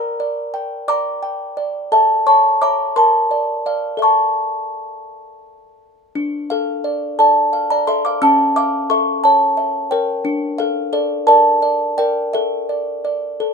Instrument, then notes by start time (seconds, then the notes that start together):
music box
Already playing: A#4 A#5 E6
0.20 D5
0.54 G5
0.88 D5 A#5 D6
1.23 G5
1.57 D5
1.92 A4 E5 A5
2.27 C#5 A5 C#6
2.62 C#5 E5 A#5 D6
2.96 A#4 A5 C6
3.31 D5
3.66 D5 F5
3.97 A4 E5
4.02 A5 C#6
6.15 D4
6.50 A4 F5
6.84 D5
7.19 A4 D5 A5
7.53 F5
7.70 D5 A#5
7.87 A4 E5 C6
8.05 F5 D6
8.22 C#4 A5 E6
8.56 E5 F5 D6
8.90 A4 E5 C#6
9.24 C#5 A5
9.57 E5
9.91 A#4 C#5 G5
10.25 D4
10.58 A4 F5
10.93 A4 D5
11.27 A#4 D5 A5
11.62 D5
11.98 A#4 D5 G5
12.33 A4 E5
12.69 D5
13.05 D5
13.40 A4